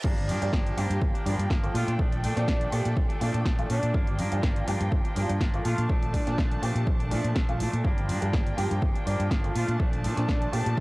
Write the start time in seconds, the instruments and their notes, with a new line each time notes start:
0.04 fingered electric bass G1, grand piano A#2 F3 G3 D4, clean electric guitar F3 A#3 D4, violin section G4 F5 G5, kick, crash
0.18 closed hi-hat
0.28 fingered electric bass G2, clean electric guitar F3 A#3 D4, open hi-hat
0.42 fingered electric bass G2, grand piano A#2 F3 G3 D4, closed hi-hat
0.52 fingered electric bass G1, clean electric guitar F3 A#3 D4, kick, snare
0.66 closed hi-hat
0.77 fingered electric bass G2, grand piano A#2 F3 G3 G4, clean electric guitar F3 A#3 D4, snare, open hi-hat
0.90 fingered electric bass G2, closed hi-hat
1.02 fingered electric bass G1, kick
1.14 clean electric guitar A#3 D4, closed hi-hat
1.25 fingered electric bass G2, grand piano A#2 F3 G3 D4, clean electric guitar F3 A#3 D4, open hi-hat
1.39 fingered electric bass G2, closed hi-hat
1.50 fingered electric bass G1, clean electric guitar F3 A#3 D4, kick, snare
1.63 grand piano A#2 F3 A3 F4, closed hi-hat
1.74 fingered electric bass A#2, clean electric guitar F3 A3 D4, horn section F4, violin section A4 D5, open hi-hat
1.87 fingered electric bass A#2, clean electric guitar A3 D4, closed hi-hat
1.99 fingered electric bass A#1, grand piano A#2 F3 A3 D4, clean electric guitar F3 A3 D4, kick
2.12 closed hi-hat
2.23 fingered electric bass A#2, clean electric guitar F3 A3 D4, open hi-hat
2.36 grand piano A#2 F3 A3 D4, fingered electric bass A#2, snare, closed hi-hat
2.47 fingered electric bass A#1, clean electric guitar F3 A3 D4, horn section D4, kick, snare
2.61 closed hi-hat
2.71 grand piano A#2 F3 A3 G4, fingered electric bass A#2, clean electric guitar F3 A3 D4, open hi-hat
2.85 fingered electric bass A#2, closed hi-hat
2.97 fingered electric bass A#1, kick
3.09 clean electric guitar A3 D4, closed hi-hat
3.20 grand piano A#2 F3 A3 D4, fingered electric bass A#2, clean electric guitar F3 A3 D4, open hi-hat
3.34 fingered electric bass A#2, closed hi-hat
3.45 fingered electric bass A#1, clean electric guitar F3 A3 D4, kick, snare
3.58 grand piano A#2 F3 A3 F4, closed hi-hat
3.69 fingered electric bass A#2, clean electric guitar F3 A3 D4, horn section D4, open hi-hat
3.82 fingered electric bass A#2, clean electric guitar A3 D4, closed hi-hat
3.94 fingered electric bass G1, grand piano A#2 F3 G3 D4, clean electric guitar F3 A#3 D4, violin section F4 G5, kick
4.07 closed hi-hat
4.18 fingered electric bass G2, clean electric guitar F3 A#3 D4, open hi-hat
4.32 fingered electric bass G2, grand piano A#2 F3 G3 D4, closed hi-hat
4.42 fingered electric bass G1, clean electric guitar F3 A#3 D4, kick, snare
4.56 closed hi-hat
4.66 fingered electric bass G2, grand piano A#2 F3 G3 G4, clean electric guitar F3 A#3 D4, snare, open hi-hat
4.81 fingered electric bass G2, closed hi-hat
4.92 fingered electric bass G1, kick
5.04 clean electric guitar A#3 D4, closed hi-hat
5.15 fingered electric bass G2, grand piano A#2 F3 G3 D4, clean electric guitar F3 A#3 D4, open hi-hat
5.29 fingered electric bass G2, closed hi-hat
5.40 fingered electric bass G1, clean electric guitar F3 A#3 D4, kick, snare
5.54 grand piano A#2 F3 A3 F4, closed hi-hat
5.64 fingered electric bass A#2, clean electric guitar F3 A3 D4, violin section D4 A5, horn section F4, open hi-hat
5.77 fingered electric bass A#2, clean electric guitar A3 D4, closed hi-hat
5.89 fingered electric bass A#1, grand piano A#2 F3 A3 D4, clean electric guitar F3 A3 D4, kick
6.03 closed hi-hat
6.13 fingered electric bass A#2, clean electric guitar F3 A3 D4, horn section D4, kick, open hi-hat
6.27 grand piano A#2 F3 A3 D4, fingered electric bass A#2, snare, closed hi-hat
6.38 fingered electric bass A#1, clean electric guitar F3 A3 D4, kick, snare
6.52 closed hi-hat
6.62 grand piano A#2 F3 A3 G4, fingered electric bass A#2, clean electric guitar F3 A3 D4, open hi-hat
6.75 fingered electric bass A#2, closed hi-hat
6.87 fingered electric bass A#1, kick
6.99 clean electric guitar A3 D4, closed hi-hat
7.11 grand piano A#2 F3 A3 D4, fingered electric bass A#2, clean electric guitar F3 A3 D4, open hi-hat
7.24 fingered electric bass A#2, closed hi-hat
7.35 fingered electric bass A#1, clean electric guitar F3 A3 D4, kick, snare
7.49 grand piano A#2 F3 A3 F4, closed hi-hat
7.59 fingered electric bass A#2, clean electric guitar F3 A3 D4, open hi-hat
7.72 fingered electric bass A#2, clean electric guitar A3 D4, closed hi-hat
7.84 fingered electric bass G1, grand piano A#2 F3 G3 D4, clean electric guitar F3 A#3 D4, violin section F4 G5, kick
7.98 closed hi-hat
8.08 fingered electric bass G2, clean electric guitar F3 A#3 D4, open hi-hat
8.22 fingered electric bass G2, grand piano A#2 F3 G3 D4, closed hi-hat
8.33 fingered electric bass G1, clean electric guitar F3 A#3 D4, kick, snare
8.47 closed hi-hat
8.57 fingered electric bass G2, grand piano A#2 F3 G3 G4, clean electric guitar F3 A#3 D4, snare, open hi-hat
8.71 fingered electric bass G2, closed hi-hat
8.82 fingered electric bass G1, kick
8.94 clean electric guitar A#3 D4, closed hi-hat
9.05 fingered electric bass G2, grand piano A#2 F3 G3 D4, clean electric guitar F3 A#3 D4, open hi-hat
9.20 fingered electric bass G2, closed hi-hat
9.30 fingered electric bass G1, clean electric guitar F3 D4, kick, snare
9.44 grand piano A#2 F3 A3 F4, closed hi-hat
9.54 fingered electric bass A#2, clean electric guitar F3 A3 D4, violin section D4 A5, horn section F4, open hi-hat
9.68 fingered electric bass A#2, clean electric guitar A3 D4, closed hi-hat
9.79 fingered electric bass A#1, grand piano A#2 F3 A3 D4, clean electric guitar F3 A3 D4, kick
9.93 closed hi-hat
10.04 fingered electric bass A#2, clean electric guitar F3 A3 D4, open hi-hat
10.16 grand piano A#2 F3 A3 D4, fingered electric bass A#2, snare, closed hi-hat
10.28 fingered electric bass A#1, clean electric guitar F3 D4, horn section D4, kick, snare
10.42 closed hi-hat
10.52 grand piano A#2 F3 A3 G4, fingered electric bass A#2, clean electric guitar F3 A3 D4, open hi-hat
10.66 fingered electric bass A#2, closed hi-hat